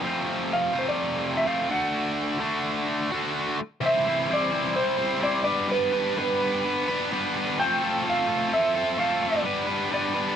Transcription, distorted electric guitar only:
0.02 F2 C3 F3 A3 C4 F4
0.73 F2 C3 F3 A3 C4 F4
1.45 F2 C3 F3 A3 C4 F4
1.69 D3 A3 D4 F#4
2.39 D3 A3 D4 F#4
3.12 D3 A3 D4 F#4
3.81 C3 E3 G3 C4 E4 C5
4.07 G3 C4 E4 C5
4.28 C3 E3 G3 C4 E4 C5
4.51 G3 C4 E4 C5
4.97 G3 C4 E4 C5
5.20 G3 C4 E4 C5
5.45 G3 B3 D4 B4
5.68 G3 B3 D4 B4
5.93 B3 D4 B4
6.17 G3 B3 D4 B4
6.41 B3 D4 B4
6.88 B3 D4 B4
7.12 G3 B3 D4 B4
7.58 F3 A3 C4 F4 A4
7.81 C4 F4 A4
8.04 F3 A3 C4 F4 A4
8.28 C4 F4 A4
8.75 C4 F4 A4
8.97 A3 C4 F4 A4
9.43 G3 B3 D4 B4
9.67 B3 D4 B4
9.90 G3 B3 D4 B4
10.14 B3 D4 B4

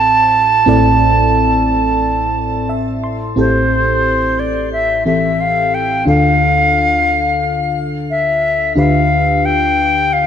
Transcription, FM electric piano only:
Already playing: A1 A2 C4 E4 A4 C5
0.66 A1 A2 C4 E4 A4 D5
2.69 E5
3.04 C6
3.36 A1 A2 C4 E4 G4 A4
5.06 E3 C4 G4 A4
6.06 D2 D3 D4 F4 A4
8.76 D2 D3 D4 F4 G4 B4

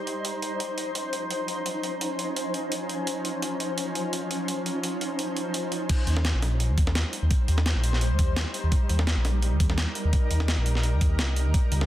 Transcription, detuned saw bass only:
6.07 D#2
6.34 A#1
6.69 D#2
6.95 D#2
7.22 D#2
7.48 D#2
7.75 A#1
8.11 D#2
8.37 D#2
8.64 D#2
8.89 D#2
9.16 A#1
9.52 D#2
9.78 D#2
10.05 D#2
10.31 D#2
10.58 A#1
10.93 D#2
11.19 C2
11.46 D#2
11.72 C#2

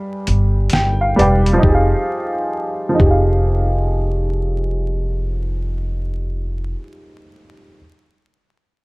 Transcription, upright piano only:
Already playing: G3 G4 B4 D5 F5
0.73 G5
1.01 F5
1.16 G3 G4 B4 D5
1.21 G5
1.53 F3
1.59 D#4
1.64 G4
1.69 G#4
1.74 F5
2.89 F3
2.94 D#4
3.00 G4
3.05 G#4
3.10 F5

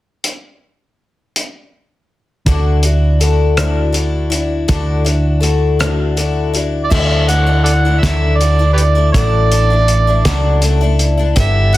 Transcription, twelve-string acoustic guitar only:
2.46 D3 A3 D4 E4 F#4
2.84 D4 E4 F#4
3.20 A3 D4 E4 F#4
3.58 D3 A3 D4 E4 F#4
3.93 A3 D4 E4 F#4
4.30 D4 E4 F#4
4.68 D3 A3 D4 E4 F#4
5.05 D4 E4 F#4
5.40 A3 D4 E4 F#4
5.79 D3 A3 D4 E4 F#4
6.17 A3 D4 E4 F#4
6.53 D4 E4 F#4
6.90 D3 F#3 A3 D4 E4
7.28 F#3 A3 D4 E4
7.47 A3 D4 E4
7.85 A3 D4 E4
8.03 D3 F#3 A3 D4 E4
8.40 F#3 A3 D4 E4
8.59 A3 D4 E4
8.95 A3 D4 E4
9.15 D3 F#3 A3 D4 E4
9.51 F#3 A3 D4 E4
9.70 A3 D4 E4
10.07 A3 D4 E4
10.26 F#3 A3 D4 E4
10.62 F#3 A3 D4 E4
10.81 A3 D4 E4
11.18 A3 D4 E4
11.36 G2 D3 E3 G3 B3 E4
11.73 E3 G3

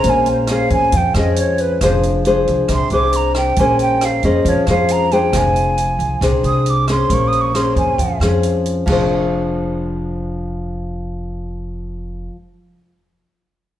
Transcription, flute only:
Already playing: A#5
0.10 G#5
0.31 C5
0.52 F5
0.73 G#5
0.97 G5
1.17 D#5
1.39 C#5
1.61 B4
1.83 C5
2.74 C6
2.93 D6
3.16 A#5
3.37 G5
3.59 G#5
3.81 G5
4.05 F5
4.25 D#5
4.49 C#5
4.69 F5
4.92 A#5
5.13 G5
5.37 G#5
6.46 D#6
6.70 D6
6.90 C6
7.14 C#6
7.28 D#6
7.41 C#6
7.56 C6
7.78 G#5

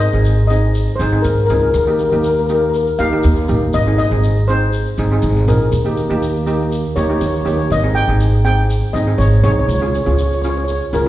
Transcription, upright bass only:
0.13 G#1
0.99 G#1
1.25 G#1
1.50 C#2
1.74 D#2
2.12 D#2
2.99 D#2
3.24 D#2
3.49 A1
3.74 G#1
4.11 G#1
4.98 G#1
5.23 G#1
5.48 A#1
5.72 D#2
6.10 D#2
6.96 D#2
7.21 D#2
7.46 D#2
7.70 G#1
8.08 G#1
8.94 G#1
9.18 G#1
9.44 C2
9.69 C#2
10.06 C#2
10.93 C#2

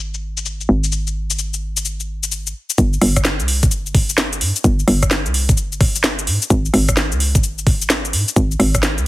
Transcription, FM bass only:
Already playing: G#1
0.69 G#1
2.78 G1
3.02 G1
3.40 C2
3.63 G1
4.41 G2
4.64 G1
4.88 G1
5.26 C2
5.49 G1
6.27 G#2
6.50 G#1
6.74 G#1
7.12 C#2
7.35 G#1
8.13 G#2
8.36 G#1
8.60 G#1
8.98 C#2

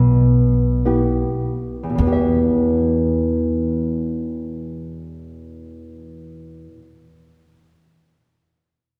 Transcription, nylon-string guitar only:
Already playing: B2
0.85 B3 E4 G4
1.83 E2
1.89 B2
1.95 E3
2.01 B3
2.07 G4
2.12 E5

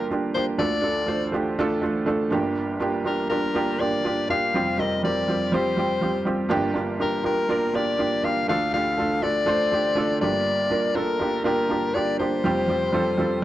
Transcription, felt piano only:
Already playing: G1 G2 A#3 D4 F4 G4 A4 A#4
0.10 A#3 D4 F4 G4
0.35 A#3 D4 F4 G4
0.58 D2 D3 A3 D4 F4 A4
0.82 A3 D4 F4 A4
1.06 A3 D4 F4 C5
1.32 A3 D4 F4 G4
1.59 A3 D4 F4 A4
1.82 A3 D4 F4 A4
2.06 A3 D4 F4 A4
2.30 G1 G2 A#3 D4 F4 G4
2.80 A#3 D4 F4 G4
3.04 A#3 D4 F4 G4
3.30 A#3 D4 F4 G4
3.54 A#3 D4 F4 G4
3.79 A#3 D4 F4 G4
4.04 A#3 D4 F4 G4
4.29 A#3 D4 F4 G4
4.54 F1 F2 G3 C4 F4 G4
4.78 G3 C4 F4 A#4
5.03 G3 C4 F4 A#4
5.28 G3 C4 F4 G4
5.52 G3 C4 F4 G4
5.77 G3 C4 F4 G4
6.01 G3 C4 F4 G4
6.25 G3 C4 F4 G4
6.49 G1 G2 A#3 D4 F4 G4
6.74 A#3 D4 F4 G4
6.99 A#3 D4 F4 G4
7.23 A#3 D4 F4 G4
7.49 A#3 D4 F4 A#4
7.74 A#3 D4 F4 G4
7.98 A#3 D4 F4 G4
8.23 A#3 D4 F4 G4
8.48 D2 D3 A3 D4 F4 A4
8.73 A3 D4 F4 G4
8.98 A3 D4 F4 A4
9.22 A3 D4 F4 A4
9.46 A3 D4 F4 C5
9.71 A3 D4 F4 G4
9.95 A3 D4 F4 A4
10.21 G1 G2 A#3 D4 F4 G4
10.70 A#3 D4 F4 A#4
10.94 A#3 D4 F4 A4
11.19 A#3 D4 F4 G4
11.44 A#3 D4 F4 G4
11.69 A#3 D4 F4 G4
11.94 A#3 D4 F4 G4
12.19 A#3 D4 F4 G4
12.44 F1 F2 G3 C4 F4 G4
12.68 G3 C4 F4 G4
12.92 G3 C4 F4 A4
13.18 G3 C4 F4 A4

